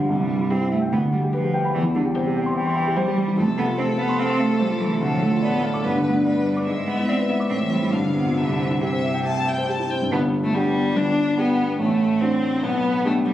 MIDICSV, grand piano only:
0, 0, Header, 1, 2, 480
1, 0, Start_track
1, 0, Key_signature, 0, "major"
1, 0, Tempo, 411241
1, 117, Time_signature, 4, 2, 24, 8
1, 8756, Tempo, 436364
1, 11635, Key_signature, 1, "major"
1, 11636, Tempo, 417246
1, 15335, End_track
2, 0, Start_track
2, 0, Title_t, "Grand piano"
2, 0, Program_c, 0, 0
2, 0, Control_c, 0, 64, 127
2, 0, Note_on_c, 0, 43, 41
2, 0, Note_on_c, 0, 50, 35
2, 0, Note_on_c, 0, 55, 36
2, 0, Note_on_c, 0, 65, 35
2, 0, Note_on_c, 0, 67, 37
2, 0, Note_on_c, 0, 77, 37
2, 0, Note_on_c, 0, 79, 37
2, 115, Note_on_c, 0, 36, 45
2, 118, Note_off_c, 0, 55, 0
2, 140, Control_c, 0, 64, 0
2, 141, Note_off_c, 0, 50, 0
2, 142, Note_off_c, 0, 43, 0
2, 142, Note_off_c, 0, 79, 0
2, 144, Note_off_c, 0, 65, 0
2, 146, Note_off_c, 0, 77, 0
2, 152, Note_off_c, 0, 67, 0
2, 231, Note_on_c, 0, 43, 33
2, 311, Control_c, 0, 64, 127
2, 353, Note_on_c, 0, 55, 35
2, 427, Note_off_c, 0, 43, 0
2, 474, Note_on_c, 0, 64, 36
2, 548, Note_off_c, 0, 55, 0
2, 587, Note_on_c, 0, 67, 37
2, 668, Note_off_c, 0, 64, 0
2, 712, Note_on_c, 0, 64, 37
2, 784, Note_off_c, 0, 67, 0
2, 834, Note_on_c, 0, 76, 38
2, 906, Note_off_c, 0, 64, 0
2, 951, Note_on_c, 0, 79, 38
2, 1027, Note_off_c, 0, 76, 0
2, 1047, Note_off_c, 0, 36, 0
2, 1074, Note_off_c, 0, 79, 0
2, 1074, Note_on_c, 0, 38, 46
2, 1099, Control_c, 0, 64, 0
2, 1196, Note_on_c, 0, 50, 34
2, 1280, Control_c, 0, 64, 127
2, 1317, Note_on_c, 0, 55, 39
2, 1389, Note_off_c, 0, 50, 0
2, 1440, Note_on_c, 0, 67, 40
2, 1510, Note_off_c, 0, 55, 0
2, 1560, Note_on_c, 0, 71, 42
2, 1632, Note_off_c, 0, 67, 0
2, 1680, Note_on_c, 0, 67, 37
2, 1753, Note_off_c, 0, 71, 0
2, 1796, Note_on_c, 0, 79, 44
2, 1873, Note_off_c, 0, 67, 0
2, 1922, Note_on_c, 0, 83, 43
2, 1990, Note_off_c, 0, 79, 0
2, 2009, Note_off_c, 0, 38, 0
2, 2040, Note_off_c, 0, 83, 0
2, 2044, Note_on_c, 0, 40, 50
2, 2061, Control_c, 0, 64, 0
2, 2157, Note_on_c, 0, 52, 39
2, 2258, Control_c, 0, 64, 127
2, 2278, Note_on_c, 0, 55, 40
2, 2345, Note_off_c, 0, 52, 0
2, 2399, Note_on_c, 0, 67, 39
2, 2465, Note_off_c, 0, 55, 0
2, 2520, Note_on_c, 0, 72, 43
2, 2585, Note_off_c, 0, 67, 0
2, 2639, Note_on_c, 0, 67, 41
2, 2705, Note_off_c, 0, 72, 0
2, 2760, Note_on_c, 0, 79, 41
2, 2824, Note_off_c, 0, 67, 0
2, 2874, Note_on_c, 0, 84, 43
2, 2944, Note_off_c, 0, 79, 0
2, 3002, Note_on_c, 0, 79, 42
2, 3061, Note_off_c, 0, 84, 0
2, 3119, Note_on_c, 0, 84, 44
2, 3185, Note_off_c, 0, 79, 0
2, 3228, Note_on_c, 0, 79, 44
2, 3304, Note_off_c, 0, 84, 0
2, 3350, Note_on_c, 0, 67, 42
2, 3418, Note_off_c, 0, 79, 0
2, 3463, Note_on_c, 0, 72, 47
2, 3539, Note_off_c, 0, 67, 0
2, 3582, Note_on_c, 0, 67, 41
2, 3655, Note_off_c, 0, 72, 0
2, 3706, Note_on_c, 0, 55, 46
2, 3775, Note_off_c, 0, 67, 0
2, 3820, Note_on_c, 0, 52, 40
2, 3896, Note_off_c, 0, 55, 0
2, 3898, Note_off_c, 0, 40, 0
2, 3934, Note_on_c, 0, 41, 53
2, 3941, Note_off_c, 0, 52, 0
2, 3964, Control_c, 0, 64, 0
2, 4058, Note_on_c, 0, 48, 45
2, 4125, Control_c, 0, 64, 127
2, 4179, Note_on_c, 0, 57, 43
2, 4250, Note_off_c, 0, 48, 0
2, 4294, Note_on_c, 0, 65, 43
2, 4369, Note_off_c, 0, 57, 0
2, 4412, Note_on_c, 0, 72, 46
2, 4486, Note_off_c, 0, 65, 0
2, 4528, Note_on_c, 0, 69, 45
2, 4605, Note_off_c, 0, 72, 0
2, 4644, Note_on_c, 0, 77, 43
2, 4723, Note_off_c, 0, 69, 0
2, 4775, Note_on_c, 0, 84, 46
2, 4842, Note_off_c, 0, 77, 0
2, 4894, Note_on_c, 0, 77, 49
2, 4968, Note_off_c, 0, 84, 0
2, 5016, Note_on_c, 0, 84, 47
2, 5087, Note_off_c, 0, 77, 0
2, 5136, Note_on_c, 0, 77, 47
2, 5207, Note_off_c, 0, 84, 0
2, 5257, Note_on_c, 0, 69, 44
2, 5327, Note_off_c, 0, 77, 0
2, 5369, Note_on_c, 0, 72, 46
2, 5447, Note_off_c, 0, 69, 0
2, 5489, Note_on_c, 0, 65, 45
2, 5563, Note_off_c, 0, 72, 0
2, 5608, Note_on_c, 0, 57, 45
2, 5684, Note_off_c, 0, 65, 0
2, 5727, Note_on_c, 0, 48, 41
2, 5803, Note_off_c, 0, 41, 0
2, 5803, Note_off_c, 0, 57, 0
2, 5846, Note_on_c, 0, 38, 52
2, 5850, Note_off_c, 0, 48, 0
2, 5876, Control_c, 0, 64, 0
2, 5968, Note_on_c, 0, 45, 44
2, 6088, Note_on_c, 0, 57, 39
2, 6093, Control_c, 0, 64, 127
2, 6163, Note_off_c, 0, 45, 0
2, 6203, Note_on_c, 0, 65, 42
2, 6284, Note_off_c, 0, 57, 0
2, 6329, Note_on_c, 0, 74, 45
2, 6401, Note_off_c, 0, 65, 0
2, 6451, Note_on_c, 0, 69, 38
2, 6525, Note_off_c, 0, 74, 0
2, 6572, Note_on_c, 0, 77, 44
2, 6645, Note_off_c, 0, 69, 0
2, 6696, Note_on_c, 0, 86, 46
2, 6766, Note_off_c, 0, 77, 0
2, 6782, Note_off_c, 0, 38, 0
2, 6810, Note_on_c, 0, 43, 50
2, 6815, Note_off_c, 0, 86, 0
2, 6839, Control_c, 0, 64, 0
2, 6935, Note_on_c, 0, 50, 40
2, 7050, Control_c, 0, 64, 127
2, 7052, Note_on_c, 0, 59, 44
2, 7127, Note_off_c, 0, 50, 0
2, 7173, Note_on_c, 0, 62, 40
2, 7246, Note_off_c, 0, 59, 0
2, 7294, Note_on_c, 0, 74, 43
2, 7367, Note_off_c, 0, 62, 0
2, 7418, Note_on_c, 0, 71, 44
2, 7489, Note_off_c, 0, 74, 0
2, 7543, Note_on_c, 0, 74, 45
2, 7613, Note_off_c, 0, 71, 0
2, 7664, Note_on_c, 0, 86, 44
2, 7737, Note_off_c, 0, 74, 0
2, 7752, Note_off_c, 0, 43, 0
2, 7785, Note_off_c, 0, 86, 0
2, 7786, Note_on_c, 0, 44, 50
2, 7807, Control_c, 0, 64, 0
2, 7907, Note_on_c, 0, 56, 39
2, 8020, Control_c, 0, 64, 127
2, 8025, Note_on_c, 0, 59, 35
2, 8100, Note_off_c, 0, 56, 0
2, 8146, Note_on_c, 0, 64, 39
2, 8219, Note_off_c, 0, 59, 0
2, 8270, Note_on_c, 0, 74, 41
2, 8340, Note_off_c, 0, 64, 0
2, 8395, Note_on_c, 0, 71, 36
2, 8463, Note_off_c, 0, 74, 0
2, 8519, Note_on_c, 0, 76, 38
2, 8586, Note_off_c, 0, 71, 0
2, 8636, Note_on_c, 0, 86, 40
2, 8709, Note_off_c, 0, 76, 0
2, 8726, Note_off_c, 0, 44, 0
2, 8756, Note_off_c, 0, 86, 0
2, 8760, Note_on_c, 0, 45, 44
2, 8776, Control_c, 0, 64, 0
2, 8876, Note_on_c, 0, 52, 33
2, 8961, Control_c, 0, 64, 127
2, 8988, Note_on_c, 0, 60, 34
2, 9057, Note_off_c, 0, 52, 0
2, 9107, Note_on_c, 0, 64, 37
2, 9173, Note_off_c, 0, 60, 0
2, 9207, Note_off_c, 0, 45, 0
2, 9221, Note_off_c, 0, 64, 0
2, 9230, Note_on_c, 0, 43, 41
2, 9241, Control_c, 0, 64, 0
2, 9341, Note_on_c, 0, 50, 29
2, 9414, Control_c, 0, 64, 127
2, 9462, Note_on_c, 0, 59, 35
2, 9534, Note_off_c, 0, 50, 0
2, 9586, Note_on_c, 0, 65, 30
2, 9656, Note_off_c, 0, 59, 0
2, 9696, Note_off_c, 0, 43, 0
2, 9707, Note_off_c, 0, 65, 0
2, 9708, Note_on_c, 0, 36, 44
2, 9728, Control_c, 0, 64, 0
2, 9834, Note_on_c, 0, 43, 33
2, 9922, Control_c, 0, 64, 127
2, 9959, Note_on_c, 0, 60, 31
2, 10027, Note_off_c, 0, 43, 0
2, 10078, Note_on_c, 0, 64, 32
2, 10151, Note_off_c, 0, 60, 0
2, 10200, Note_on_c, 0, 67, 33
2, 10270, Note_off_c, 0, 64, 0
2, 10322, Note_on_c, 0, 72, 30
2, 10391, Note_off_c, 0, 67, 0
2, 10438, Note_on_c, 0, 76, 32
2, 10513, Note_off_c, 0, 72, 0
2, 10559, Note_on_c, 0, 79, 32
2, 10632, Note_off_c, 0, 76, 0
2, 10675, Note_on_c, 0, 76, 33
2, 10752, Note_off_c, 0, 79, 0
2, 10805, Note_on_c, 0, 79, 30
2, 10870, Note_off_c, 0, 76, 0
2, 10915, Note_on_c, 0, 76, 33
2, 10994, Note_off_c, 0, 79, 0
2, 11040, Note_on_c, 0, 72, 32
2, 11108, Note_off_c, 0, 76, 0
2, 11160, Note_on_c, 0, 67, 32
2, 11231, Note_off_c, 0, 72, 0
2, 11277, Note_on_c, 0, 64, 30
2, 11351, Note_off_c, 0, 67, 0
2, 11405, Note_on_c, 0, 60, 33
2, 11469, Note_off_c, 0, 64, 0
2, 11521, Note_on_c, 0, 43, 29
2, 11591, Note_off_c, 0, 60, 0
2, 11593, Note_off_c, 0, 36, 0
2, 11624, Note_off_c, 0, 43, 0
2, 11638, Note_on_c, 0, 31, 50
2, 11641, Note_on_c, 0, 43, 54
2, 11659, Control_c, 0, 64, 0
2, 11838, Control_c, 0, 64, 127
2, 12126, Note_on_c, 0, 59, 39
2, 12133, Note_on_c, 0, 62, 42
2, 12137, Note_on_c, 0, 67, 42
2, 12554, Note_off_c, 0, 59, 0
2, 12557, Note_off_c, 0, 62, 0
2, 12559, Note_off_c, 0, 67, 0
2, 12569, Note_off_c, 0, 31, 0
2, 12571, Note_off_c, 0, 43, 0
2, 12599, Note_on_c, 0, 31, 47
2, 12599, Note_on_c, 0, 43, 42
2, 13080, Note_on_c, 0, 59, 43
2, 13085, Note_on_c, 0, 62, 42
2, 13090, Note_on_c, 0, 67, 45
2, 13515, Note_off_c, 0, 59, 0
2, 13518, Note_off_c, 0, 62, 0
2, 13520, Note_off_c, 0, 67, 0
2, 13532, Note_off_c, 0, 43, 0
2, 13533, Note_off_c, 0, 31, 0
2, 13555, Note_on_c, 0, 33, 48
2, 13556, Note_on_c, 0, 45, 55
2, 13584, Control_c, 0, 64, 0
2, 13738, Control_c, 0, 64, 127
2, 14041, Note_on_c, 0, 60, 42
2, 14043, Note_on_c, 0, 62, 41
2, 14049, Note_on_c, 0, 66, 44
2, 14476, Note_off_c, 0, 60, 0
2, 14477, Note_off_c, 0, 62, 0
2, 14480, Note_off_c, 0, 66, 0
2, 14490, Note_off_c, 0, 33, 0
2, 14490, Note_off_c, 0, 45, 0
2, 14513, Note_on_c, 0, 47, 48
2, 14517, Note_on_c, 0, 35, 52
2, 14546, Control_c, 0, 64, 0
2, 14705, Control_c, 0, 64, 127
2, 14996, Note_on_c, 0, 59, 44
2, 15002, Note_on_c, 0, 62, 44
2, 15006, Note_on_c, 0, 67, 49
2, 15335, Note_off_c, 0, 35, 0
2, 15335, Note_off_c, 0, 47, 0
2, 15335, Note_off_c, 0, 59, 0
2, 15335, Note_off_c, 0, 62, 0
2, 15335, Note_off_c, 0, 67, 0
2, 15335, End_track
0, 0, End_of_file